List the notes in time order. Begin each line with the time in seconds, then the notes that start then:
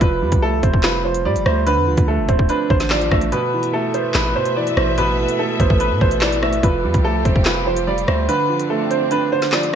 0.01 F1 F3 B4, kick, closed hi-hat
0.22 F2 G3
0.32 C2, kick, closed hi-hat
0.42 A3 A4
0.63 F1 C4 C5, kick, closed hi-hat
0.74 kick
0.83 F4 B4, snare, clap, closed hi-hat
1.05 F3 C5
1.14 closed hi-hat
1.25 A2 G3 D5
1.36 F1, closed hi-hat
1.46 D2 A3 C5, cross-stick
1.67 D3 B4, closed hi-hat
1.77 F2
1.87 D2 F3
1.97 D2, kick, closed hi-hat
2.08 A3 A4
2.18 F1
2.29 D1 C4 C5, kick, closed hi-hat
2.39 kick
2.49 D4 B4, closed hi-hat
2.70 A1 D3 C5, kick
2.80 snare, closed hi-hat
2.90 F3 D5, snare, clap
3.01 closed hi-hat
3.11 A1 A3 E5, kick, cross-stick
3.21 closed hi-hat
3.32 B2 A3 A4 B4 E5, closed hi-hat
3.53 E3
3.63 closed hi-hat
3.73 A3 A4
3.94 B3 C5, closed hi-hat
4.14 A1 B4, snare, clap, closed hi-hat
4.36 B2 C5
4.46 closed hi-hat
4.56 E3 D5
4.67 closed hi-hat
4.77 A1 A3 C5, cross-stick
4.98 B2 B4, closed hi-hat
5.19 E3
5.29 closed hi-hat
5.39 A3 A4
5.60 A1 B3 C5, kick, closed hi-hat
5.70 A1, kick
5.80 B4, closed hi-hat
5.91 A2
6.01 A1 B2 C5, kick
6.11 closed hi-hat
6.21 E3 D5, snare, clap
6.32 closed hi-hat
6.42 A3 E5, cross-stick
6.53 closed hi-hat
6.63 F1 F3 F4 G4 B4, kick, closed hi-hat
6.84 F2 G3
6.94 C2, kick, closed hi-hat
7.04 A3 A4
7.25 F1 C4 C5, kick, closed hi-hat
7.36 F1, kick
7.45 F4 B4, snare, clap, closed hi-hat
7.67 F3 C5
7.77 closed hi-hat
7.87 G3 D5
7.98 closed hi-hat
8.08 D2 A3 C5, cross-stick
8.29 D3 C4 D4 B4, closed hi-hat
8.49 F3
8.60 closed hi-hat
8.70 A3 A4
8.91 C4 C5, closed hi-hat
9.11 D4 B4, closed hi-hat
9.32 D3 C5
9.42 snare, closed hi-hat
9.52 F3 D5, snare, clap
9.63 closed hi-hat